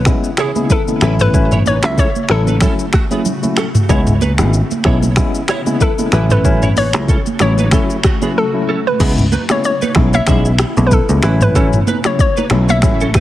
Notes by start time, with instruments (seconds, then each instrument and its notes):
Already playing: ambient pad C#3 B3 E4, synth pluck B4
0.05 tine electric piano G#3 B3 C#4 E4, finger snap, kick, cross-stick, low conga, shaker
0.24 shaker
0.37 clean electric guitar E4 C#5, synth pluck G#4, finger snap, cross-stick, shaker
0.56 tine electric piano G#3 B3 C#4 E4, high conga, shaker
0.70 clean electric guitar E4 B4, synth pluck A4, kick, low conga, shaker
0.87 tine electric piano G#3 B3 C#4 E4, high conga, shaker
1.01 picked electric bass A1, ambient pad C#3 A3 F#4, tine electric piano F#3 A3 C#4 E4, clean electric guitar E4 B4, finger snap, cross-stick, shaker
1.19 clean electric guitar C#4 A4, synth pluck B4, mid tom, shaker
1.34 tine electric piano F#3 A3 C#4 E4, kick, low conga, shaker
1.52 clean electric guitar E4 C#5, mid tom, shaker
1.66 clean electric guitar D#4 B4, synth pluck C#5, high conga, shaker
1.83 picked electric bass C#2, tine electric piano F#3 A3 C#4 E4, synth pluck E5, finger snap, cross-stick, high conga, shaker
1.98 clean electric guitar C#4 A4, synth pluck C#5, kick, shaker
2.15 high conga, shaker
2.29 picked electric bass A1, tine electric piano F#3 A3 C#4 E4, clean electric guitar E4 C#5, synth pluck A4, finger snap, cross-stick
2.47 clean electric guitar D#4 B4, high conga, shaker
2.61 tine electric piano F#3 A3 C#4 E4, clean electric guitar C#4 A4, finger snap, kick, cross-stick, low conga, shaker
2.79 shaker
2.93 clean electric guitar A3 F#4, finger snap, kick, cross-stick, shaker
3.11 tine electric piano F#3 A3 C#4 E4, clean electric guitar B3 G#4, high conga, shaker
3.25 low conga, shaker
3.43 tine electric piano F#3 A3 C#4 E4, high conga, shaker
3.57 clean electric guitar C#4 A4, finger snap, cross-stick, shaker
3.75 mid tom, shaker
3.89 picked electric bass C#2, ambient pad C#3 B3 E4, tine electric piano G#3 B3 C#4 E4, clean electric guitar E4 C#5, kick, low conga, shaker
4.07 mid tom, shaker
4.21 clean electric guitar D#4 B4, high conga, shaker
4.38 picked electric bass G#1, tine electric piano G#3 B3 C#4 E4, finger snap, cross-stick, high conga, shaker
4.53 shaker
4.71 high conga, shaker
4.84 picked electric bass B1, tine electric piano G#3 B3 C#4 E4, clean electric guitar E4 C#5, finger snap, kick, cross-stick
5.02 high conga, shaker
5.16 tine electric piano G#3 B3 C#4 E4, finger snap, kick, cross-stick, low conga, shaker
5.35 shaker
5.48 clean electric guitar E4 C#5, finger snap, cross-stick, shaker
5.66 tine electric piano G#3 B3 C#4 E4, high conga, shaker
5.81 clean electric guitar E4 B4, synth pluck A4, kick, low conga, shaker
5.98 tine electric piano G#3 B3 C#4 E4, high conga, shaker
6.12 picked electric bass A1, tine electric piano F#3 A3 C#4 E4, ambient pad A3 F#4, clean electric guitar E4 B4, finger snap, cross-stick, shaker
6.30 clean electric guitar C#4 A4, synth pluck B4, mid tom, shaker
6.45 tine electric piano F#3 A3 C#4 E4, kick, low conga, shaker
6.62 clean electric guitar E4 C#5, mid tom, shaker
6.76 clean electric guitar D#4 B4, synth pluck C#5, open hi-hat, high conga, shaker
6.93 picked electric bass C#2, tine electric piano F#3 A3 C#4 E4, finger snap, cross-stick, high conga, shaker
7.08 clean electric guitar C#4 A4, kick, shaker
7.26 high conga, shaker
7.39 picked electric bass A1, tine electric piano F#3 A3 C#4 E4, clean electric guitar E4 C#5, synth pluck C#5, finger snap, cross-stick, low conga, shaker
7.58 clean electric guitar D#4 B4, high conga, shaker
7.71 tine electric piano F#3 A3 C#4 E4, clean electric guitar C#4 A4, finger snap, kick, cross-stick, low conga, shaker
7.90 shaker
8.03 clean electric guitar A3 F#4, finger snap, kick, cross-stick, shaker
8.22 tine electric piano F#3 A3 C#4 E4, clean electric guitar B3 G#4, high conga, shaker
8.38 synth pluck A4
8.53 tine electric piano F#3 A3 C#4 E4
8.69 clean electric guitar C#4 A4
8.87 synth pluck B4
9.00 picked electric bass C#2, ambient pad C#3 B3 E4, tine electric piano G#3 B3 C#4 E4, clean electric guitar B3 G#4, kick, crash, low conga, shaker
9.18 mid tom, shaker
9.32 clean electric guitar D#4 B4, high conga, shaker
9.49 tine electric piano G#3 B3 C#4 E4, synth pluck C#5, finger snap, cross-stick, high conga, shaker
9.64 synth pluck C#5, shaker
9.82 clean electric guitar D#4 B4, high conga, shaker
9.95 picked electric bass B1, tine electric piano G#3 B3 C#4 E4, finger snap, kick, cross-stick, low conga
10.13 clean electric guitar E4 C#5, synth pluck E5, high conga, shaker
10.27 picked electric bass B1, tine electric piano G#3 B3 C#4 E4, clean electric guitar G#4 E5, finger snap, kick, cross-stick, low conga, shaker
10.45 shaker
10.59 finger snap, cross-stick, shaker
10.77 picked electric bass B1, tine electric piano G#3 B3 C#4 E4, high conga, shaker
10.87 synth pluck B4
10.91 synth pluck A4, kick, low conga, shaker
11.09 picked electric bass C#2, tine electric piano G#3 B3 C#4 E4, high conga, shaker
11.23 picked electric bass A1, tine electric piano F#3 A3 C#4 E4, ambient pad A3 F#4, clean electric guitar E4 B4, finger snap, cross-stick, shaker
11.41 synth pluck B4, mid tom, high conga, shaker
11.55 tine electric piano F#3 A3 C#4 E4, clean electric guitar C#4 A4, kick, low conga, shaker
11.73 mid tom, shaker
11.87 clean electric guitar D#4 B4, high conga, shaker
12.04 tine electric piano F#3 A3 C#4 E4, synth pluck C#5, finger snap, cross-stick, high conga, shaker
12.19 synth pluck C#5, kick, shaker
12.37 clean electric guitar D#4 B4, high conga, shaker
12.50 picked electric bass B1, tine electric piano F#3 A3 C#4 E4, finger snap, cross-stick, low conga
12.69 clean electric guitar E4 C#5, synth pluck E5, high conga, shaker
12.82 picked electric bass A1, tine electric piano F#3 A3 C#4 E4, finger snap, kick, cross-stick, low conga, shaker
13.01 clean electric guitar C#4 A4, shaker
13.14 clean electric guitar D#4 B4, finger snap, kick, cross-stick, shaker